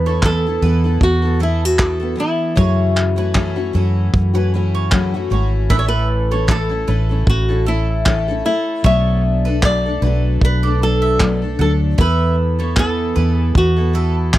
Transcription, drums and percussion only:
0.23 kick, clap
1.01 kick
1.79 kick, clap
2.57 kick
2.97 clap
3.35 kick, clap
4.14 kick
4.92 kick, clap
5.70 kick
6.49 kick, clap
7.27 kick
8.06 kick, clap
8.84 kick
9.63 kick, clap
10.41 kick
11.20 kick, clap
11.99 kick
12.76 kick, clap
13.55 kick
14.33 kick, clap

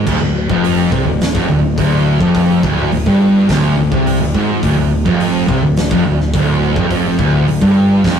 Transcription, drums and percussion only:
0.07 kick, crash
0.50 kick
0.64 open hi-hat
0.92 kick
1.21 snare, open hi-hat
1.35 kick
1.78 kick, open hi-hat
2.21 kick
2.35 kick, open hi-hat
2.63 kick
2.92 open hi-hat
3.06 kick
3.49 kick, snare, open hi-hat
3.92 kick
4.07 open hi-hat
4.35 kick
4.63 kick, open hi-hat
5.06 kick
5.20 open hi-hat
5.48 kick
5.77 snare, open hi-hat
5.91 kick
6.20 snare
6.34 kick, open hi-hat
6.76 kick
6.91 kick, open hi-hat
7.19 kick
7.48 open hi-hat
7.62 kick
8.04 kick, snare, open hi-hat

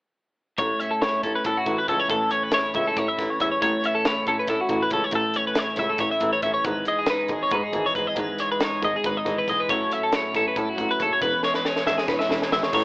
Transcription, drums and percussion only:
0.58 kick, closed hi-hat
0.81 closed hi-hat
1.02 snare, closed hi-hat
1.24 kick, closed hi-hat
1.45 kick, closed hi-hat
1.66 kick, closed hi-hat
1.88 kick, closed hi-hat
2.10 kick, closed hi-hat
2.31 closed hi-hat
2.52 snare, closed hi-hat
2.74 kick, closed hi-hat
2.97 kick, closed hi-hat
3.19 kick, snare, closed hi-hat
3.40 kick, closed hi-hat
3.62 kick, closed hi-hat
3.84 closed hi-hat
4.05 snare, closed hi-hat
4.27 kick, closed hi-hat
4.47 kick, snare, closed hi-hat
4.69 kick, closed hi-hat
4.90 kick, closed hi-hat
5.11 kick, closed hi-hat
5.34 closed hi-hat
5.55 snare, closed hi-hat
5.76 kick, snare, closed hi-hat
5.98 kick, closed hi-hat
6.20 kick, closed hi-hat
6.42 kick, closed hi-hat
6.64 kick, closed hi-hat
6.85 closed hi-hat
7.06 snare, closed hi-hat
7.28 kick, snare, closed hi-hat
7.51 kick, closed hi-hat
7.73 kick, closed hi-hat
7.95 kick, closed hi-hat
8.16 kick, closed hi-hat
8.39 closed hi-hat
8.60 snare, closed hi-hat
8.82 kick, closed hi-hat
9.04 kick, closed hi-hat
9.26 kick, closed hi-hat
9.48 kick, closed hi-hat
9.69 kick, closed hi-hat
9.91 closed hi-hat
10.12 snare, closed hi-hat
10.34 kick, closed hi-hat
10.56 kick, closed hi-hat
10.78 kick, closed hi-hat
11.00 kick, closed hi-hat
11.21 kick, closed hi-hat
11.43 snare
11.54 snare
11.65 snare
11.76 snare
11.87 snare
11.98 snare
12.08 kick, snare
12.20 snare
12.31 snare
12.42 snare
12.52 snare
12.63 snare
12.73 kick, crash

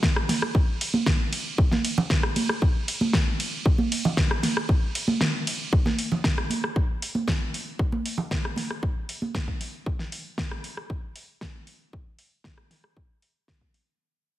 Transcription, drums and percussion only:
0.03 kick, snare
0.16 cross-stick
0.29 snare, open hi-hat, ride, high conga
0.42 cross-stick
0.55 kick
0.81 open hi-hat, ride
0.94 high conga
1.06 kick, snare
1.33 open hi-hat, ride
1.58 kick
1.71 snare, high conga
1.85 open hi-hat, ride
1.98 low conga
2.10 kick, snare
2.23 cross-stick
2.36 open hi-hat, ride, high conga
2.49 cross-stick
2.62 kick
2.88 open hi-hat, ride
3.01 high conga
3.13 kick, snare
3.40 open hi-hat, ride
3.66 kick
3.78 high conga
3.92 open hi-hat, ride
4.05 low conga
4.17 kick, snare
4.31 cross-stick
4.43 snare, open hi-hat, ride, high conga
4.57 cross-stick
4.69 kick
4.95 open hi-hat, ride
5.08 high conga
5.21 snare
5.47 open hi-hat, ride
5.73 kick
5.86 snare, high conga
5.99 open hi-hat
6.12 low conga
6.24 kick, snare
6.38 cross-stick
6.50 open hi-hat, high conga
6.64 cross-stick
6.76 kick
7.02 open hi-hat
7.15 high conga
7.28 kick, snare
7.54 open hi-hat
7.79 kick
7.92 high conga
8.06 open hi-hat
8.18 low conga
8.31 kick, snare
8.45 cross-stick
8.56 snare, open hi-hat, high conga
8.71 cross-stick
8.83 kick
9.09 open hi-hat
9.22 high conga
9.35 kick, snare
9.48 kick
9.61 open hi-hat
9.86 kick
9.99 snare
10.12 open hi-hat
10.38 kick, snare
10.51 cross-stick
10.64 open hi-hat
10.77 cross-stick
10.90 kick
11.16 open hi-hat
11.41 kick, snare
11.67 open hi-hat
11.93 kick
12.19 open hi-hat
12.44 kick, snare
12.58 cross-stick
12.71 snare, open hi-hat
12.84 cross-stick
12.97 kick
13.22 open hi-hat
13.48 kick, snare
13.61 kick
13.74 open hi-hat

